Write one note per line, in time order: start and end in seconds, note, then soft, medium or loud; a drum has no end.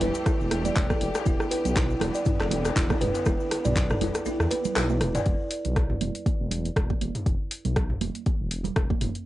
0.00 0.10 E1 medium
0.00 1.22 E3 medium
0.00 1.24 A3 medium
0.00 5.22 G4 medium
0.00 0.09 B4 loud
0.00 open hi-hat medium
0.00 djembe slap medium
0.00 high conga medium
0.00 djembe tone medium
0.00 djembe bass loud
0.00 low conga medium
0.15 closed hi-hat medium
0.15 shaker medium
0.26 0.39 E4 loud
0.26 kick loud
0.26 cross-stick medium
0.26 closed hi-hat soft
0.26 high conga medium
0.26 djembe tone medium
0.26 djembe bass loud
0.26 shaker medium
0.40 0.70 E1 medium
0.40 shaker soft
0.51 cross-stick medium
0.51 open hi-hat medium
0.51 high conga medium
0.51 djembe tone medium
0.65 0.75 D5 medium
0.65 closed hi-hat medium
0.65 high conga medium
0.65 low conga loud
0.65 shaker medium
0.76 0.93 E1 medium
0.76 kick loud
0.76 clap loud
0.76 closed hi-hat soft
0.76 djembe tone medium
0.76 shaker medium
0.90 1.00 A4 medium
0.90 kick medium
0.90 cross-stick medium
0.90 high conga loud
0.90 shaker soft
1.01 1.10 E1 loud
1.01 open hi-hat medium
1.01 djembe tone medium
1.15 cross-stick medium
1.15 closed hi-hat medium
1.15 djembe slap loud
1.15 shaker medium
1.26 1.35 E1 loud
1.26 5.22 D3 medium
1.26 5.22 B3 medium
1.26 1.39 E4 loud
1.26 kick loud
1.26 closed hi-hat soft
1.26 high conga medium
1.26 djembe tone medium
1.26 shaker medium
1.40 cross-stick medium
1.40 shaker soft
1.51 1.59 B4 medium
1.51 open hi-hat medium
1.51 djembe tone loud
1.65 1.95 B1 medium
1.65 closed hi-hat medium
1.65 low conga medium
1.65 shaker medium
1.76 1.89 E4 loud
1.76 kick loud
1.76 cross-stick medium
1.76 clap loud
1.76 closed hi-hat soft
1.76 djembe tone medium
1.76 shaker medium
1.90 shaker soft
2.00 2.10 E1 medium
2.00 cross-stick medium
2.00 open hi-hat medium
2.00 djembe slap medium
2.00 djembe tone medium
2.00 high conga medium
2.00 low conga medium
2.14 2.25 D5 medium
2.14 closed hi-hat medium
2.14 shaker medium
2.25 kick loud
2.25 closed hi-hat soft
2.25 mid tom medium
2.25 high conga medium
2.25 djembe tone medium
2.25 djembe bass loud
2.25 shaker medium
2.40 2.70 E1 medium
2.40 2.50 A4 medium
2.40 cross-stick medium
2.40 clap soft
2.40 shaker soft
2.51 open hi-hat medium
2.51 high conga medium
2.51 djembe tone loud
2.51 low conga medium
2.65 cross-stick medium
2.65 closed hi-hat medium
2.65 djembe slap loud
2.65 shaker medium
2.76 2.93 E1 medium
2.76 2.89 E4 loud
2.76 kick loud
2.76 clap loud
2.76 closed hi-hat soft
2.76 djembe tone medium
2.76 shaker medium
2.90 kick medium
2.90 cross-stick medium
2.90 djembe slap medium
2.90 high conga loud
2.90 shaker soft
3.01 3.10 E1 loud
3.01 3.09 B4 loud
3.01 mid tom medium
3.01 open hi-hat medium
3.01 djembe tone medium
3.14 closed hi-hat medium
3.14 djembe slap loud
3.14 shaker medium
3.25 3.35 E1 loud
3.25 3.39 E4 loud
3.25 kick loud
3.25 cross-stick medium
3.25 closed hi-hat soft
3.25 djembe tone medium
3.25 high conga medium
3.25 shaker medium
3.40 shaker soft
3.50 cross-stick medium
3.50 open hi-hat medium
3.50 djembe tone medium
3.65 3.95 B1 loud
3.65 3.75 D5 medium
3.65 closed hi-hat medium
3.65 mid tom medium
3.65 low conga loud
3.65 shaker medium
3.76 kick loud
3.76 clap loud
3.76 closed hi-hat soft
3.76 djembe tone loud
3.76 shaker medium
3.90 4.00 A4 medium
3.90 cross-stick medium
3.90 mid tom medium
3.90 shaker soft
4.01 4.10 E1 medium
4.01 open hi-hat medium
4.01 djembe slap medium
4.01 djembe tone medium
4.01 high conga medium
4.01 djembe bass medium
4.01 low conga medium
4.15 cross-stick medium
4.15 closed hi-hat medium
4.15 shaker medium
4.25 4.39 E4 loud
4.25 closed hi-hat soft
4.25 djembe tone medium
4.25 high conga medium
4.25 djembe bass loud
4.25 shaker medium
4.40 4.47 E2 medium
4.40 cross-stick medium
4.40 shaker soft
4.51 4.58 B4 loud
4.51 open hi-hat medium
4.51 djembe tone medium
4.51 high conga medium
4.64 closed hi-hat medium
4.64 high conga medium
4.64 low conga loud
4.64 shaker medium
4.75 5.03 B1 loud
4.75 4.88 E4 loud
4.75 cross-stick medium
4.75 clap loud
4.75 closed hi-hat soft
4.75 djembe tone medium
4.75 shaker medium
4.89 high tom medium
4.89 high conga medium
4.89 shaker soft
5.01 5.18 E1 loud
5.01 cross-stick medium
5.01 open hi-hat medium
5.01 mid tom medium
5.01 djembe tone medium
5.15 5.25 D5 medium
5.15 closed hi-hat medium
5.15 mid tom medium
5.15 djembe slap loud
5.15 shaker medium
5.26 5.35 E1 loud
5.26 kick loud
5.26 closed hi-hat soft
5.51 open hi-hat medium
5.65 5.95 B1 loud
5.65 closed hi-hat medium
5.65 low conga medium
5.76 kick loud
5.76 cross-stick loud
5.76 closed hi-hat soft
5.90 mid tom medium
6.01 6.10 E1 medium
6.01 open hi-hat medium
6.01 high conga medium
6.01 low conga medium
6.15 closed hi-hat medium
6.26 kick loud
6.26 closed hi-hat soft
6.26 high conga medium
6.40 6.70 E1 medium
6.51 open hi-hat medium
6.51 low conga medium
6.65 closed hi-hat medium
6.65 high conga medium
6.76 6.93 E1 medium
6.76 kick loud
6.76 cross-stick loud
6.76 closed hi-hat soft
6.90 kick medium
6.90 high conga medium
7.01 7.10 E1 loud
7.01 open hi-hat medium
7.01 high conga medium
7.15 closed hi-hat medium
7.15 mid tom medium
7.26 7.35 E1 loud
7.26 kick loud
7.26 closed hi-hat soft
7.51 open hi-hat medium
7.65 7.95 B1 loud
7.65 closed hi-hat medium
7.65 low conga medium
7.76 kick loud
7.76 cross-stick loud
7.76 closed hi-hat soft
7.90 mid tom medium
8.01 8.10 E1 medium
8.01 open hi-hat medium
8.01 high conga loud
8.01 low conga medium
8.15 closed hi-hat medium
8.26 kick loud
8.26 closed hi-hat soft
8.26 high conga medium
8.40 8.70 E1 medium
8.51 open hi-hat medium
8.64 closed hi-hat medium
8.64 low conga loud
8.76 8.93 E1 medium
8.76 kick loud
8.76 cross-stick loud
8.76 closed hi-hat soft
8.90 kick medium
8.90 high conga loud
9.01 9.10 E1 loud
9.01 mid tom medium
9.01 open hi-hat medium
9.15 closed hi-hat medium